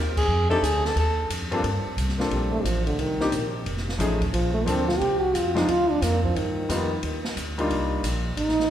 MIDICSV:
0, 0, Header, 1, 7, 480
1, 0, Start_track
1, 0, Key_signature, -2, "minor"
1, 0, Tempo, 336889
1, 409, Time_signature, 4, 2, 24, 8
1, 12396, End_track
2, 0, Start_track
2, 0, Title_t, "Alto saxophone"
2, 0, Program_c, 0, 65
2, 248, Note_on_c, 0, 68, 88
2, 689, Note_off_c, 0, 68, 0
2, 716, Note_on_c, 0, 69, 104
2, 910, Note_on_c, 0, 68, 90
2, 932, Note_off_c, 0, 69, 0
2, 1207, Note_off_c, 0, 68, 0
2, 1222, Note_on_c, 0, 69, 84
2, 1371, Note_off_c, 0, 69, 0
2, 1415, Note_on_c, 0, 69, 77
2, 1840, Note_off_c, 0, 69, 0
2, 12396, End_track
3, 0, Start_track
3, 0, Title_t, "Grand piano"
3, 0, Program_c, 1, 0
3, 704, Note_on_c, 1, 57, 74
3, 708, Note_on_c, 1, 60, 67
3, 717, Note_on_c, 1, 62, 67
3, 728, Note_on_c, 1, 63, 67
3, 735, Note_on_c, 1, 67, 81
3, 866, Note_off_c, 1, 57, 0
3, 868, Note_off_c, 1, 60, 0
3, 873, Note_off_c, 1, 62, 0
3, 878, Note_off_c, 1, 63, 0
3, 882, Note_off_c, 1, 67, 0
3, 2154, Note_on_c, 1, 43, 76
3, 2162, Note_on_c, 1, 58, 69
3, 2163, Note_on_c, 1, 60, 64
3, 2167, Note_on_c, 1, 62, 69
3, 2174, Note_on_c, 1, 65, 68
3, 2179, Note_on_c, 1, 69, 82
3, 2311, Note_off_c, 1, 43, 0
3, 2315, Note_off_c, 1, 58, 0
3, 2315, Note_off_c, 1, 60, 0
3, 2317, Note_off_c, 1, 62, 0
3, 2321, Note_off_c, 1, 65, 0
3, 2324, Note_off_c, 1, 69, 0
3, 3112, Note_on_c, 1, 58, 63
3, 3120, Note_on_c, 1, 60, 58
3, 3132, Note_on_c, 1, 62, 59
3, 3133, Note_on_c, 1, 65, 58
3, 3148, Note_on_c, 1, 69, 64
3, 3733, Note_off_c, 1, 58, 0
3, 3737, Note_off_c, 1, 60, 0
3, 3743, Note_off_c, 1, 62, 0
3, 3744, Note_off_c, 1, 65, 0
3, 3751, Note_off_c, 1, 69, 0
3, 4561, Note_on_c, 1, 58, 69
3, 4567, Note_on_c, 1, 60, 61
3, 4571, Note_on_c, 1, 62, 67
3, 4576, Note_on_c, 1, 63, 63
3, 4583, Note_on_c, 1, 67, 81
3, 4715, Note_off_c, 1, 58, 0
3, 4718, Note_off_c, 1, 60, 0
3, 4721, Note_off_c, 1, 62, 0
3, 4723, Note_off_c, 1, 63, 0
3, 4726, Note_off_c, 1, 67, 0
3, 5678, Note_on_c, 1, 53, 70
3, 5688, Note_on_c, 1, 57, 60
3, 5699, Note_on_c, 1, 61, 62
3, 5705, Note_on_c, 1, 63, 59
3, 5710, Note_on_c, 1, 68, 75
3, 5961, Note_off_c, 1, 53, 0
3, 5966, Note_off_c, 1, 57, 0
3, 5972, Note_off_c, 1, 61, 0
3, 5975, Note_off_c, 1, 63, 0
3, 5977, Note_off_c, 1, 68, 0
3, 6634, Note_on_c, 1, 53, 65
3, 6647, Note_on_c, 1, 58, 59
3, 6653, Note_on_c, 1, 60, 62
3, 6657, Note_on_c, 1, 62, 60
3, 6670, Note_on_c, 1, 69, 72
3, 6920, Note_off_c, 1, 53, 0
3, 6926, Note_off_c, 1, 58, 0
3, 6929, Note_off_c, 1, 60, 0
3, 6931, Note_off_c, 1, 62, 0
3, 6938, Note_off_c, 1, 69, 0
3, 7907, Note_on_c, 1, 53, 72
3, 7909, Note_on_c, 1, 56, 65
3, 7917, Note_on_c, 1, 60, 67
3, 7927, Note_on_c, 1, 65, 76
3, 7929, Note_on_c, 1, 62, 62
3, 8069, Note_off_c, 1, 53, 0
3, 8070, Note_off_c, 1, 56, 0
3, 8074, Note_off_c, 1, 60, 0
3, 8079, Note_off_c, 1, 65, 0
3, 8080, Note_off_c, 1, 62, 0
3, 9533, Note_on_c, 1, 55, 67
3, 9535, Note_on_c, 1, 58, 58
3, 9543, Note_on_c, 1, 59, 60
3, 9549, Note_on_c, 1, 63, 64
3, 9560, Note_on_c, 1, 65, 70
3, 9809, Note_off_c, 1, 55, 0
3, 9810, Note_off_c, 1, 58, 0
3, 9814, Note_off_c, 1, 59, 0
3, 9818, Note_off_c, 1, 63, 0
3, 9823, Note_off_c, 1, 65, 0
3, 10800, Note_on_c, 1, 55, 68
3, 10809, Note_on_c, 1, 58, 66
3, 10820, Note_on_c, 1, 62, 66
3, 10825, Note_on_c, 1, 63, 65
3, 10829, Note_on_c, 1, 65, 79
3, 11418, Note_off_c, 1, 55, 0
3, 11423, Note_off_c, 1, 58, 0
3, 11429, Note_off_c, 1, 62, 0
3, 11431, Note_off_c, 1, 63, 0
3, 11433, Note_off_c, 1, 65, 0
3, 12396, End_track
4, 0, Start_track
4, 0, Title_t, "Trombone"
4, 0, Program_c, 2, 57
4, 3311, Note_on_c, 2, 55, 72
4, 3578, Note_off_c, 2, 55, 0
4, 3587, Note_on_c, 2, 57, 88
4, 3775, Note_on_c, 2, 53, 75
4, 3797, Note_off_c, 2, 57, 0
4, 4075, Note_off_c, 2, 53, 0
4, 4083, Note_on_c, 2, 50, 82
4, 4265, Note_on_c, 2, 51, 78
4, 4287, Note_off_c, 2, 50, 0
4, 5046, Note_off_c, 2, 51, 0
4, 6177, Note_on_c, 2, 53, 81
4, 6460, Note_off_c, 2, 53, 0
4, 6471, Note_on_c, 2, 57, 86
4, 6658, Note_on_c, 2, 60, 81
4, 6679, Note_off_c, 2, 57, 0
4, 6946, Note_off_c, 2, 60, 0
4, 6955, Note_on_c, 2, 65, 90
4, 7112, Note_on_c, 2, 67, 94
4, 7133, Note_off_c, 2, 65, 0
4, 7433, Note_on_c, 2, 66, 92
4, 7455, Note_off_c, 2, 67, 0
4, 7635, Note_on_c, 2, 65, 79
4, 7656, Note_off_c, 2, 66, 0
4, 7931, Note_off_c, 2, 65, 0
4, 7937, Note_on_c, 2, 63, 91
4, 8118, Note_on_c, 2, 65, 100
4, 8140, Note_off_c, 2, 63, 0
4, 8419, Note_on_c, 2, 62, 90
4, 8441, Note_off_c, 2, 65, 0
4, 8604, Note_on_c, 2, 58, 80
4, 8625, Note_off_c, 2, 62, 0
4, 8884, Note_off_c, 2, 58, 0
4, 8893, Note_on_c, 2, 53, 81
4, 9071, Note_on_c, 2, 51, 73
4, 9092, Note_off_c, 2, 53, 0
4, 10502, Note_off_c, 2, 51, 0
4, 11934, Note_on_c, 2, 63, 98
4, 12396, Note_off_c, 2, 63, 0
4, 12396, End_track
5, 0, Start_track
5, 0, Title_t, "Upright bass"
5, 0, Program_c, 3, 32
5, 0, Note_on_c, 3, 39, 86
5, 386, Note_off_c, 3, 39, 0
5, 395, Note_on_c, 3, 41, 85
5, 867, Note_off_c, 3, 41, 0
5, 883, Note_on_c, 3, 38, 94
5, 1351, Note_off_c, 3, 38, 0
5, 1364, Note_on_c, 3, 39, 85
5, 1832, Note_off_c, 3, 39, 0
5, 1847, Note_on_c, 3, 41, 77
5, 2314, Note_off_c, 3, 41, 0
5, 2326, Note_on_c, 3, 43, 77
5, 2613, Note_off_c, 3, 43, 0
5, 2804, Note_on_c, 3, 36, 90
5, 3273, Note_off_c, 3, 36, 0
5, 3285, Note_on_c, 3, 34, 70
5, 3753, Note_off_c, 3, 34, 0
5, 3761, Note_on_c, 3, 33, 80
5, 4227, Note_off_c, 3, 33, 0
5, 4235, Note_on_c, 3, 36, 79
5, 4704, Note_off_c, 3, 36, 0
5, 4713, Note_on_c, 3, 34, 95
5, 5188, Note_off_c, 3, 34, 0
5, 5208, Note_on_c, 3, 29, 79
5, 5672, Note_off_c, 3, 29, 0
5, 5681, Note_on_c, 3, 33, 89
5, 6152, Note_off_c, 3, 33, 0
5, 6167, Note_on_c, 3, 34, 83
5, 6635, Note_off_c, 3, 34, 0
5, 6642, Note_on_c, 3, 38, 95
5, 7113, Note_off_c, 3, 38, 0
5, 7125, Note_on_c, 3, 36, 82
5, 7595, Note_off_c, 3, 36, 0
5, 7608, Note_on_c, 3, 41, 90
5, 8076, Note_off_c, 3, 41, 0
5, 8091, Note_on_c, 3, 38, 78
5, 8558, Note_off_c, 3, 38, 0
5, 8570, Note_on_c, 3, 41, 93
5, 9037, Note_off_c, 3, 41, 0
5, 9055, Note_on_c, 3, 43, 75
5, 9520, Note_off_c, 3, 43, 0
5, 9530, Note_on_c, 3, 41, 79
5, 9997, Note_off_c, 3, 41, 0
5, 10013, Note_on_c, 3, 39, 84
5, 10479, Note_off_c, 3, 39, 0
5, 10488, Note_on_c, 3, 38, 89
5, 10956, Note_off_c, 3, 38, 0
5, 10971, Note_on_c, 3, 36, 80
5, 11438, Note_off_c, 3, 36, 0
5, 11444, Note_on_c, 3, 34, 79
5, 11914, Note_off_c, 3, 34, 0
5, 11925, Note_on_c, 3, 33, 82
5, 12394, Note_off_c, 3, 33, 0
5, 12396, End_track
6, 0, Start_track
6, 0, Title_t, "Muted upright bass strokes"
6, 2638, Note_on_c, 9, 29, 36
6, 2781, Note_off_c, 9, 29, 0
6, 12396, End_track
7, 0, Start_track
7, 0, Title_t, "Drums"
7, 241, Note_on_c, 9, 36, 82
7, 244, Note_on_c, 9, 49, 77
7, 383, Note_off_c, 9, 36, 0
7, 387, Note_off_c, 9, 49, 0
7, 728, Note_on_c, 9, 51, 44
7, 871, Note_off_c, 9, 51, 0
7, 904, Note_on_c, 9, 44, 56
7, 904, Note_on_c, 9, 51, 74
7, 1047, Note_off_c, 9, 44, 0
7, 1047, Note_off_c, 9, 51, 0
7, 1207, Note_on_c, 9, 38, 42
7, 1349, Note_off_c, 9, 38, 0
7, 1375, Note_on_c, 9, 51, 59
7, 1517, Note_off_c, 9, 51, 0
7, 1856, Note_on_c, 9, 44, 54
7, 1856, Note_on_c, 9, 51, 77
7, 1998, Note_off_c, 9, 44, 0
7, 1998, Note_off_c, 9, 51, 0
7, 2161, Note_on_c, 9, 51, 46
7, 2304, Note_off_c, 9, 51, 0
7, 2335, Note_on_c, 9, 51, 57
7, 2478, Note_off_c, 9, 51, 0
7, 2818, Note_on_c, 9, 44, 57
7, 2818, Note_on_c, 9, 51, 67
7, 2961, Note_off_c, 9, 44, 0
7, 2961, Note_off_c, 9, 51, 0
7, 2974, Note_on_c, 9, 38, 29
7, 3116, Note_off_c, 9, 38, 0
7, 3132, Note_on_c, 9, 38, 42
7, 3275, Note_off_c, 9, 38, 0
7, 3294, Note_on_c, 9, 51, 54
7, 3437, Note_off_c, 9, 51, 0
7, 3780, Note_on_c, 9, 44, 58
7, 3780, Note_on_c, 9, 51, 68
7, 3923, Note_off_c, 9, 44, 0
7, 3923, Note_off_c, 9, 51, 0
7, 4086, Note_on_c, 9, 51, 44
7, 4228, Note_off_c, 9, 51, 0
7, 4255, Note_on_c, 9, 51, 58
7, 4398, Note_off_c, 9, 51, 0
7, 4562, Note_on_c, 9, 38, 36
7, 4704, Note_off_c, 9, 38, 0
7, 4731, Note_on_c, 9, 44, 51
7, 4731, Note_on_c, 9, 51, 64
7, 4873, Note_off_c, 9, 44, 0
7, 4873, Note_off_c, 9, 51, 0
7, 5216, Note_on_c, 9, 51, 58
7, 5358, Note_off_c, 9, 51, 0
7, 5371, Note_on_c, 9, 38, 30
7, 5514, Note_off_c, 9, 38, 0
7, 5539, Note_on_c, 9, 38, 44
7, 5682, Note_off_c, 9, 38, 0
7, 5696, Note_on_c, 9, 44, 60
7, 5696, Note_on_c, 9, 51, 69
7, 5838, Note_off_c, 9, 44, 0
7, 5838, Note_off_c, 9, 51, 0
7, 5999, Note_on_c, 9, 36, 51
7, 6005, Note_on_c, 9, 51, 47
7, 6142, Note_off_c, 9, 36, 0
7, 6148, Note_off_c, 9, 51, 0
7, 6178, Note_on_c, 9, 51, 66
7, 6320, Note_off_c, 9, 51, 0
7, 6658, Note_on_c, 9, 44, 51
7, 6658, Note_on_c, 9, 51, 68
7, 6801, Note_off_c, 9, 44, 0
7, 6801, Note_off_c, 9, 51, 0
7, 6963, Note_on_c, 9, 38, 39
7, 7106, Note_off_c, 9, 38, 0
7, 7143, Note_on_c, 9, 51, 54
7, 7285, Note_off_c, 9, 51, 0
7, 7619, Note_on_c, 9, 44, 52
7, 7619, Note_on_c, 9, 51, 66
7, 7761, Note_off_c, 9, 44, 0
7, 7761, Note_off_c, 9, 51, 0
7, 7926, Note_on_c, 9, 38, 41
7, 7927, Note_on_c, 9, 51, 45
7, 8068, Note_off_c, 9, 38, 0
7, 8070, Note_off_c, 9, 51, 0
7, 8099, Note_on_c, 9, 51, 63
7, 8241, Note_off_c, 9, 51, 0
7, 8577, Note_on_c, 9, 38, 36
7, 8579, Note_on_c, 9, 44, 63
7, 8579, Note_on_c, 9, 51, 71
7, 8720, Note_off_c, 9, 38, 0
7, 8721, Note_off_c, 9, 44, 0
7, 8721, Note_off_c, 9, 51, 0
7, 8885, Note_on_c, 9, 36, 54
7, 9027, Note_off_c, 9, 36, 0
7, 9065, Note_on_c, 9, 51, 58
7, 9207, Note_off_c, 9, 51, 0
7, 9538, Note_on_c, 9, 44, 61
7, 9538, Note_on_c, 9, 51, 73
7, 9681, Note_off_c, 9, 44, 0
7, 9681, Note_off_c, 9, 51, 0
7, 10011, Note_on_c, 9, 51, 65
7, 10154, Note_off_c, 9, 51, 0
7, 10321, Note_on_c, 9, 38, 55
7, 10463, Note_off_c, 9, 38, 0
7, 10498, Note_on_c, 9, 44, 55
7, 10498, Note_on_c, 9, 51, 70
7, 10640, Note_off_c, 9, 44, 0
7, 10640, Note_off_c, 9, 51, 0
7, 10806, Note_on_c, 9, 51, 46
7, 10948, Note_off_c, 9, 51, 0
7, 10977, Note_on_c, 9, 51, 54
7, 11120, Note_off_c, 9, 51, 0
7, 11452, Note_on_c, 9, 44, 54
7, 11452, Note_on_c, 9, 51, 74
7, 11594, Note_off_c, 9, 44, 0
7, 11594, Note_off_c, 9, 51, 0
7, 11928, Note_on_c, 9, 51, 63
7, 12070, Note_off_c, 9, 51, 0
7, 12090, Note_on_c, 9, 38, 30
7, 12232, Note_off_c, 9, 38, 0
7, 12248, Note_on_c, 9, 38, 44
7, 12391, Note_off_c, 9, 38, 0
7, 12396, End_track
0, 0, End_of_file